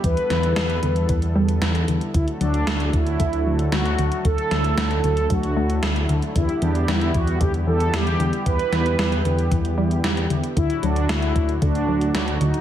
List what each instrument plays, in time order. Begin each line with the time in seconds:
Already playing: analog synth pad D3 G3 B3 E4
0.04 detuned saw bass E2, analog synth pad A4, analog polysynth B4, kick, closed hi-hat
0.17 closed hi-hat
0.30 detuned saw bass E2, synth arpeggio sound E3, snare, closed hi-hat
0.43 closed hi-hat
0.56 detuned saw bass E2, synth arpeggio sound G3, snare, closed hi-hat
0.70 closed hi-hat
0.83 detuned saw bass E2, synth arpeggio sound D3, closed hi-hat
0.96 closed hi-hat
1.09 detuned saw bass E2, synth arpeggio sound E3, kick, closed hi-hat
1.22 detuned saw bass E2, closed hi-hat
1.35 detuned saw bass E2, synth arpeggio sound G3
1.49 closed hi-hat
1.62 detuned saw bass E2, snare, closed hi-hat
1.75 closed hi-hat
1.88 detuned saw bass E2, synth arpeggio sound D3, closed hi-hat
2.01 closed hi-hat
2.14 detuned saw bass D2, synth arpeggio sound D3, analog synth pad F#3 A3 F#4 A4, analog polysynth E4, kick, closed hi-hat
2.28 closed hi-hat
2.41 detuned saw bass D2, synth arpeggio sound F#3, analog polysynth D4, closed hi-hat
2.54 closed hi-hat
2.67 detuned saw bass D2, synth arpeggio sound A3, snare, closed hi-hat
2.80 closed hi-hat
2.93 detuned saw bass D2, analog polysynth E4, kick, closed hi-hat
3.07 closed hi-hat
3.20 detuned saw bass D2, synth arpeggio sound D3, kick, closed hi-hat
3.32 detuned saw bass D2, closed hi-hat
3.46 detuned saw bass D2, synth arpeggio sound F#3
3.59 closed hi-hat
3.72 detuned saw bass D2, synth arpeggio sound A3, analog polysynth F#4, snare, closed hi-hat
3.85 closed hi-hat
3.98 detuned saw bass D2, synth arpeggio sound D3, closed hi-hat
4.12 closed hi-hat
4.25 detuned saw bass D2, analog synth pad E4, analog polysynth A4, kick, closed hi-hat
4.38 closed hi-hat
4.51 detuned saw bass D2, synth arpeggio sound F#3, snare, closed hi-hat
4.64 closed hi-hat
4.78 detuned saw bass D2, synth arpeggio sound A3, snare, closed hi-hat
4.91 closed hi-hat
5.04 detuned saw bass D2, synth arpeggio sound D3, analog polysynth A4, closed hi-hat
5.17 closed hi-hat
5.30 detuned saw bass D2, synth arpeggio sound F#3, analog polysynth F#4, kick, closed hi-hat
5.43 detuned saw bass D2, closed hi-hat
5.56 detuned saw bass D2, synth arpeggio sound A3
5.70 closed hi-hat
5.83 detuned saw bass D2, snare, closed hi-hat
5.96 closed hi-hat
6.09 detuned saw bass D2, synth arpeggio sound D3, closed hi-hat
6.22 closed hi-hat
6.36 detuned saw bass E2, synth arpeggio sound D3, analog synth pad G3 B3 G4, analog polysynth E4, kick, closed hi-hat
6.49 closed hi-hat
6.62 detuned saw bass E2, synth arpeggio sound E3, analog polysynth D4, closed hi-hat
6.75 closed hi-hat
6.88 detuned saw bass E2, synth arpeggio sound G3, analog polysynth E4, snare, closed hi-hat
7.01 closed hi-hat
7.14 detuned saw bass E2, analog polysynth F#4, kick, closed hi-hat
7.27 closed hi-hat
7.40 detuned saw bass E2, synth arpeggio sound D3, analog polysynth G4, kick, closed hi-hat
7.54 detuned saw bass E2, closed hi-hat
7.67 detuned saw bass E2, synth arpeggio sound E3, analog polysynth A4
7.80 closed hi-hat
7.93 detuned saw bass E2, synth arpeggio sound G3, analog polysynth G4, snare, closed hi-hat
8.07 closed hi-hat
8.20 detuned saw bass E2, synth arpeggio sound D3, closed hi-hat
8.33 closed hi-hat
8.46 detuned saw bass E2, analog polysynth B4, kick, closed hi-hat
8.59 closed hi-hat
8.72 detuned saw bass E2, synth arpeggio sound E3, snare, closed hi-hat
8.86 closed hi-hat
8.99 detuned saw bass E2, synth arpeggio sound G3, snare, closed hi-hat
9.12 closed hi-hat
9.25 detuned saw bass E2, synth arpeggio sound D3, closed hi-hat
9.39 closed hi-hat
9.51 detuned saw bass E2, synth arpeggio sound E3, kick, closed hi-hat
9.65 detuned saw bass E2, closed hi-hat
9.78 detuned saw bass E2, synth arpeggio sound G3
9.91 closed hi-hat
10.04 detuned saw bass E2, snare, closed hi-hat
10.17 closed hi-hat
10.30 detuned saw bass E2, synth arpeggio sound D3, closed hi-hat
10.44 closed hi-hat
10.56 detuned saw bass D2, analog synth pad A2 D3 F#3 D4 F#4, synth arpeggio sound D3, analog polysynth E4, kick, closed hi-hat
10.70 closed hi-hat
10.83 detuned saw bass D2, synth arpeggio sound F#3, analog polysynth D4, closed hi-hat
10.96 closed hi-hat
11.09 detuned saw bass D2, synth arpeggio sound A3, analog polysynth E4, snare, closed hi-hat
11.22 closed hi-hat
11.36 detuned saw bass D2, kick, closed hi-hat
11.49 closed hi-hat
11.62 detuned saw bass D2, synth arpeggio sound D3, analog polysynth D4, kick, closed hi-hat
11.75 detuned saw bass D2, closed hi-hat
11.88 detuned saw bass D2, synth arpeggio sound F#3
12.01 closed hi-hat
12.14 detuned saw bass D2, synth arpeggio sound A3, snare, closed hi-hat
12.28 closed hi-hat
12.41 detuned saw bass D2, synth arpeggio sound D3, analog polysynth D#4, closed hi-hat
12.54 closed hi-hat